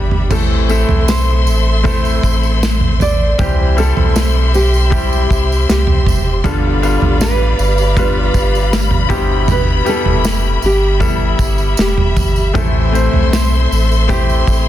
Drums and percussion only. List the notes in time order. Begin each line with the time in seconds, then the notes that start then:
0.11 floor tom
0.31 kick, floor tom, crash, tambourine
0.70 tambourine
0.89 floor tom
1.08 snare, tambourine
1.47 tambourine
1.84 kick, floor tom, tambourine
2.05 tambourine
2.23 kick, tambourine
2.43 tambourine
2.63 snare, tambourine
2.81 floor tom
3.00 floor tom, tambourine
3.39 kick, floor tom, tambourine
3.78 tambourine
3.97 floor tom
4.16 snare, tambourine
4.54 tambourine
4.74 tambourine
4.91 kick, floor tom, tambourine
5.13 tambourine
5.31 kick, tambourine
5.52 tambourine
5.69 snare, tambourine
5.87 floor tom
6.06 kick, floor tom, tambourine
6.44 kick, floor tom, tambourine
6.83 tambourine
7.02 floor tom
7.21 snare, tambourine
7.59 tambourine
7.78 tambourine
7.97 kick, floor tom, tambourine
8.34 kick, tambourine
8.55 tambourine
8.73 snare, tambourine
8.91 floor tom
9.10 kick, floor tom, tambourine
9.48 floor tom, tambourine
9.86 tambourine
10.06 floor tom
10.24 snare, tambourine
10.62 tambourine
11.00 kick, floor tom, tambourine
11.39 kick, tambourine
11.58 tambourine
11.77 snare, tambourine
11.98 floor tom
12.17 kick, floor tom, tambourine
12.36 tambourine
12.55 kick, floor tom, tambourine
12.95 tambourine
13.13 floor tom
13.33 snare, tambourine
13.72 tambourine
13.91 tambourine
14.09 kick, floor tom, tambourine
14.29 tambourine
14.47 kick, tambourine